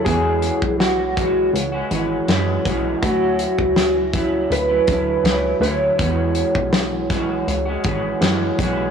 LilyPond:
<<
  \new Staff \with { instrumentName = "Clean electric guitar" } { \time 4/4 \key e \mixolydian \tempo 4 = 81 gis'4 fis'4 r2 | fis'2 b'4. cis''8~ | cis''2. r4 | }
  \new Staff \with { instrumentName = "Clean electric guitar" } { \time 4/4 \key e \mixolydian <e gis cis' fis'>4. <e gis cis' fis'>8. <gis cis' fis'>16 <e gis cis' fis'>8 <e gis cis' fis'>8 <e gis cis' fis'>8 | <fis cis' e'>4. <fis cis' e'>8. <fis cis' e'>16 <d fis cis' e'>8 <fis cis' e'>8 <d fis cis' e'>8 | <e gis cis' fis'>4. <e gis cis' fis'>8. <gis cis' fis'>16 <e gis cis' fis'>8 <e gis cis' fis'>8 <e gis cis' fis'>8 | }
  \new Staff \with { instrumentName = "Analog synth bass" } { \clef bass \time 4/4 \key e \mixolydian e,8. b,,4~ b,,16 cis,8 gis,,8 fis,8 b,,8 | d,8. cis,4~ cis,16 d,8 d,8 cis,8 d,8 | e,8. b,,4~ b,,16 cis,8 gis,,8 fis,8 b,,8 | }
  \new DrumStaff \with { instrumentName = "Drums" } \drummode { \time 4/4 <hh bd>8 hh16 bd16 <hh sn>8 <hh bd>8 hh8 hh8 <hh sn>8 <hh bd>8 | <hh bd>8 hh16 bd16 <hh sn>8 <hh bd>8 hh8 <hh bd>8 <hh sn>8 hh8 | <hh bd>8 hh16 bd16 <hh sn>8 <hh bd sn>8 hh8 <hh bd>8 <hh sn>8 <hh bd>8 | }
>>